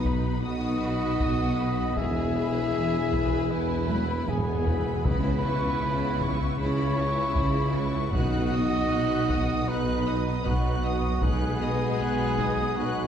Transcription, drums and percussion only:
0, 0, Header, 1, 2, 480
1, 0, Start_track
1, 0, Tempo, 771208
1, 1228, Time_signature, 4, 2, 24, 8
1, 8135, End_track
2, 0, Start_track
2, 0, Title_t, "Taiko and cinematic ensemble drums"
2, 31, Note_on_c, 9, 41, 63
2, 93, Note_off_c, 9, 41, 0
2, 747, Note_on_c, 9, 41, 61
2, 809, Note_off_c, 9, 41, 0
2, 1226, Note_on_c, 9, 41, 76
2, 1289, Note_off_c, 9, 41, 0
2, 1944, Note_on_c, 9, 41, 65
2, 2006, Note_off_c, 9, 41, 0
2, 2424, Note_on_c, 9, 48, 69
2, 2486, Note_off_c, 9, 48, 0
2, 2665, Note_on_c, 9, 45, 71
2, 2727, Note_off_c, 9, 45, 0
2, 2906, Note_on_c, 9, 43, 83
2, 2969, Note_off_c, 9, 43, 0
2, 3145, Note_on_c, 9, 41, 83
2, 3208, Note_off_c, 9, 41, 0
2, 3864, Note_on_c, 9, 41, 70
2, 3927, Note_off_c, 9, 41, 0
2, 4584, Note_on_c, 9, 41, 72
2, 4646, Note_off_c, 9, 41, 0
2, 5062, Note_on_c, 9, 41, 85
2, 5125, Note_off_c, 9, 41, 0
2, 5784, Note_on_c, 9, 41, 73
2, 5846, Note_off_c, 9, 41, 0
2, 6508, Note_on_c, 9, 41, 73
2, 6570, Note_off_c, 9, 41, 0
2, 6988, Note_on_c, 9, 41, 82
2, 7050, Note_off_c, 9, 41, 0
2, 7705, Note_on_c, 9, 41, 71
2, 7767, Note_off_c, 9, 41, 0
2, 8135, End_track
0, 0, End_of_file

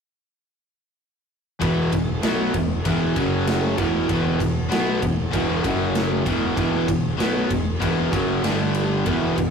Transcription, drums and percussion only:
0, 0, Header, 1, 2, 480
1, 0, Start_track
1, 0, Key_signature, 1, "minor"
1, 0, Tempo, 620476
1, 1246, Time_signature, 4, 2, 24, 8
1, 7352, End_track
2, 0, Start_track
2, 0, Title_t, "Drums"
2, 1249, Note_on_c, 9, 51, 98
2, 1251, Note_on_c, 9, 36, 102
2, 1326, Note_off_c, 9, 51, 0
2, 1328, Note_off_c, 9, 36, 0
2, 1489, Note_on_c, 9, 36, 97
2, 1489, Note_on_c, 9, 51, 78
2, 1566, Note_off_c, 9, 36, 0
2, 1567, Note_off_c, 9, 51, 0
2, 1726, Note_on_c, 9, 51, 109
2, 1728, Note_on_c, 9, 38, 125
2, 1803, Note_off_c, 9, 51, 0
2, 1805, Note_off_c, 9, 38, 0
2, 1965, Note_on_c, 9, 51, 73
2, 1967, Note_on_c, 9, 36, 84
2, 2042, Note_off_c, 9, 51, 0
2, 2044, Note_off_c, 9, 36, 0
2, 2205, Note_on_c, 9, 51, 108
2, 2207, Note_on_c, 9, 36, 102
2, 2283, Note_off_c, 9, 51, 0
2, 2284, Note_off_c, 9, 36, 0
2, 2445, Note_on_c, 9, 51, 71
2, 2447, Note_on_c, 9, 36, 106
2, 2523, Note_off_c, 9, 51, 0
2, 2524, Note_off_c, 9, 36, 0
2, 2687, Note_on_c, 9, 51, 117
2, 2689, Note_on_c, 9, 38, 117
2, 2765, Note_off_c, 9, 51, 0
2, 2767, Note_off_c, 9, 38, 0
2, 2924, Note_on_c, 9, 51, 72
2, 2926, Note_on_c, 9, 36, 98
2, 3002, Note_off_c, 9, 51, 0
2, 3004, Note_off_c, 9, 36, 0
2, 3166, Note_on_c, 9, 36, 104
2, 3166, Note_on_c, 9, 51, 99
2, 3244, Note_off_c, 9, 36, 0
2, 3244, Note_off_c, 9, 51, 0
2, 3407, Note_on_c, 9, 36, 96
2, 3412, Note_on_c, 9, 51, 78
2, 3484, Note_off_c, 9, 36, 0
2, 3490, Note_off_c, 9, 51, 0
2, 3648, Note_on_c, 9, 51, 104
2, 3651, Note_on_c, 9, 38, 118
2, 3726, Note_off_c, 9, 51, 0
2, 3728, Note_off_c, 9, 38, 0
2, 3887, Note_on_c, 9, 36, 93
2, 3889, Note_on_c, 9, 51, 74
2, 3964, Note_off_c, 9, 36, 0
2, 3966, Note_off_c, 9, 51, 0
2, 4127, Note_on_c, 9, 36, 110
2, 4129, Note_on_c, 9, 51, 101
2, 4204, Note_off_c, 9, 36, 0
2, 4206, Note_off_c, 9, 51, 0
2, 4366, Note_on_c, 9, 36, 113
2, 4368, Note_on_c, 9, 51, 72
2, 4443, Note_off_c, 9, 36, 0
2, 4445, Note_off_c, 9, 51, 0
2, 4604, Note_on_c, 9, 51, 104
2, 4607, Note_on_c, 9, 38, 118
2, 4682, Note_off_c, 9, 51, 0
2, 4684, Note_off_c, 9, 38, 0
2, 4844, Note_on_c, 9, 36, 105
2, 4847, Note_on_c, 9, 51, 73
2, 4922, Note_off_c, 9, 36, 0
2, 4925, Note_off_c, 9, 51, 0
2, 5085, Note_on_c, 9, 36, 99
2, 5086, Note_on_c, 9, 51, 89
2, 5162, Note_off_c, 9, 36, 0
2, 5164, Note_off_c, 9, 51, 0
2, 5325, Note_on_c, 9, 36, 104
2, 5327, Note_on_c, 9, 51, 78
2, 5402, Note_off_c, 9, 36, 0
2, 5404, Note_off_c, 9, 51, 0
2, 5570, Note_on_c, 9, 51, 104
2, 5573, Note_on_c, 9, 38, 121
2, 5648, Note_off_c, 9, 51, 0
2, 5650, Note_off_c, 9, 38, 0
2, 5806, Note_on_c, 9, 36, 93
2, 5807, Note_on_c, 9, 51, 79
2, 5884, Note_off_c, 9, 36, 0
2, 5884, Note_off_c, 9, 51, 0
2, 6047, Note_on_c, 9, 36, 98
2, 6050, Note_on_c, 9, 51, 102
2, 6125, Note_off_c, 9, 36, 0
2, 6127, Note_off_c, 9, 51, 0
2, 6289, Note_on_c, 9, 36, 118
2, 6293, Note_on_c, 9, 51, 69
2, 6366, Note_off_c, 9, 36, 0
2, 6370, Note_off_c, 9, 51, 0
2, 6529, Note_on_c, 9, 51, 114
2, 6531, Note_on_c, 9, 38, 109
2, 6606, Note_off_c, 9, 51, 0
2, 6608, Note_off_c, 9, 38, 0
2, 6765, Note_on_c, 9, 51, 71
2, 6842, Note_off_c, 9, 51, 0
2, 7007, Note_on_c, 9, 51, 90
2, 7012, Note_on_c, 9, 36, 96
2, 7085, Note_off_c, 9, 51, 0
2, 7089, Note_off_c, 9, 36, 0
2, 7255, Note_on_c, 9, 36, 93
2, 7255, Note_on_c, 9, 51, 80
2, 7332, Note_off_c, 9, 36, 0
2, 7332, Note_off_c, 9, 51, 0
2, 7352, End_track
0, 0, End_of_file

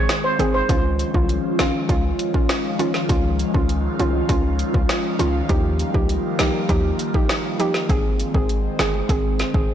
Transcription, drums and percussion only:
0, 0, Header, 1, 2, 480
1, 0, Start_track
1, 0, Tempo, 600000
1, 555, Time_signature, 4, 2, 24, 8
1, 7793, End_track
2, 0, Start_track
2, 0, Title_t, "Drums"
2, 74, Note_on_c, 9, 37, 85
2, 74, Note_on_c, 9, 38, 101
2, 74, Note_on_c, 9, 42, 73
2, 154, Note_off_c, 9, 37, 0
2, 154, Note_off_c, 9, 38, 0
2, 154, Note_off_c, 9, 42, 0
2, 316, Note_on_c, 9, 42, 65
2, 396, Note_off_c, 9, 42, 0
2, 554, Note_on_c, 9, 42, 77
2, 555, Note_on_c, 9, 36, 121
2, 634, Note_off_c, 9, 42, 0
2, 635, Note_off_c, 9, 36, 0
2, 795, Note_on_c, 9, 42, 50
2, 875, Note_off_c, 9, 42, 0
2, 915, Note_on_c, 9, 36, 83
2, 995, Note_off_c, 9, 36, 0
2, 1034, Note_on_c, 9, 42, 62
2, 1114, Note_off_c, 9, 42, 0
2, 1272, Note_on_c, 9, 38, 116
2, 1276, Note_on_c, 9, 42, 46
2, 1352, Note_off_c, 9, 38, 0
2, 1356, Note_off_c, 9, 42, 0
2, 1513, Note_on_c, 9, 36, 90
2, 1514, Note_on_c, 9, 42, 84
2, 1593, Note_off_c, 9, 36, 0
2, 1594, Note_off_c, 9, 42, 0
2, 1754, Note_on_c, 9, 42, 64
2, 1834, Note_off_c, 9, 42, 0
2, 1874, Note_on_c, 9, 36, 102
2, 1954, Note_off_c, 9, 36, 0
2, 1994, Note_on_c, 9, 37, 88
2, 1994, Note_on_c, 9, 38, 99
2, 1994, Note_on_c, 9, 42, 70
2, 2074, Note_off_c, 9, 37, 0
2, 2074, Note_off_c, 9, 38, 0
2, 2074, Note_off_c, 9, 42, 0
2, 2235, Note_on_c, 9, 42, 65
2, 2315, Note_off_c, 9, 42, 0
2, 2353, Note_on_c, 9, 38, 66
2, 2433, Note_off_c, 9, 38, 0
2, 2475, Note_on_c, 9, 36, 117
2, 2475, Note_on_c, 9, 42, 80
2, 2555, Note_off_c, 9, 36, 0
2, 2555, Note_off_c, 9, 42, 0
2, 2715, Note_on_c, 9, 42, 50
2, 2795, Note_off_c, 9, 42, 0
2, 2836, Note_on_c, 9, 36, 87
2, 2916, Note_off_c, 9, 36, 0
2, 2954, Note_on_c, 9, 42, 61
2, 3034, Note_off_c, 9, 42, 0
2, 3196, Note_on_c, 9, 42, 47
2, 3276, Note_off_c, 9, 42, 0
2, 3433, Note_on_c, 9, 36, 91
2, 3433, Note_on_c, 9, 42, 80
2, 3513, Note_off_c, 9, 36, 0
2, 3513, Note_off_c, 9, 42, 0
2, 3673, Note_on_c, 9, 42, 65
2, 3753, Note_off_c, 9, 42, 0
2, 3794, Note_on_c, 9, 36, 98
2, 3874, Note_off_c, 9, 36, 0
2, 3914, Note_on_c, 9, 37, 84
2, 3914, Note_on_c, 9, 38, 102
2, 3914, Note_on_c, 9, 42, 72
2, 3994, Note_off_c, 9, 37, 0
2, 3994, Note_off_c, 9, 38, 0
2, 3994, Note_off_c, 9, 42, 0
2, 4155, Note_on_c, 9, 42, 65
2, 4235, Note_off_c, 9, 42, 0
2, 4395, Note_on_c, 9, 36, 118
2, 4395, Note_on_c, 9, 42, 76
2, 4475, Note_off_c, 9, 36, 0
2, 4475, Note_off_c, 9, 42, 0
2, 4635, Note_on_c, 9, 42, 49
2, 4715, Note_off_c, 9, 42, 0
2, 4756, Note_on_c, 9, 36, 83
2, 4836, Note_off_c, 9, 36, 0
2, 4874, Note_on_c, 9, 42, 63
2, 4954, Note_off_c, 9, 42, 0
2, 5112, Note_on_c, 9, 38, 120
2, 5115, Note_on_c, 9, 42, 46
2, 5192, Note_off_c, 9, 38, 0
2, 5195, Note_off_c, 9, 42, 0
2, 5353, Note_on_c, 9, 36, 91
2, 5354, Note_on_c, 9, 42, 81
2, 5433, Note_off_c, 9, 36, 0
2, 5434, Note_off_c, 9, 42, 0
2, 5594, Note_on_c, 9, 42, 61
2, 5674, Note_off_c, 9, 42, 0
2, 5715, Note_on_c, 9, 36, 105
2, 5795, Note_off_c, 9, 36, 0
2, 5835, Note_on_c, 9, 37, 84
2, 5835, Note_on_c, 9, 38, 102
2, 5835, Note_on_c, 9, 42, 71
2, 5915, Note_off_c, 9, 37, 0
2, 5915, Note_off_c, 9, 38, 0
2, 5915, Note_off_c, 9, 42, 0
2, 6077, Note_on_c, 9, 42, 63
2, 6157, Note_off_c, 9, 42, 0
2, 6194, Note_on_c, 9, 38, 68
2, 6274, Note_off_c, 9, 38, 0
2, 6316, Note_on_c, 9, 36, 118
2, 6316, Note_on_c, 9, 42, 75
2, 6396, Note_off_c, 9, 36, 0
2, 6396, Note_off_c, 9, 42, 0
2, 6556, Note_on_c, 9, 42, 52
2, 6636, Note_off_c, 9, 42, 0
2, 6676, Note_on_c, 9, 36, 86
2, 6756, Note_off_c, 9, 36, 0
2, 6795, Note_on_c, 9, 42, 60
2, 6875, Note_off_c, 9, 42, 0
2, 7033, Note_on_c, 9, 38, 119
2, 7037, Note_on_c, 9, 42, 46
2, 7113, Note_off_c, 9, 38, 0
2, 7117, Note_off_c, 9, 42, 0
2, 7274, Note_on_c, 9, 36, 89
2, 7275, Note_on_c, 9, 42, 81
2, 7354, Note_off_c, 9, 36, 0
2, 7355, Note_off_c, 9, 42, 0
2, 7515, Note_on_c, 9, 42, 63
2, 7519, Note_on_c, 9, 38, 69
2, 7595, Note_off_c, 9, 42, 0
2, 7599, Note_off_c, 9, 38, 0
2, 7635, Note_on_c, 9, 36, 99
2, 7715, Note_off_c, 9, 36, 0
2, 7793, End_track
0, 0, End_of_file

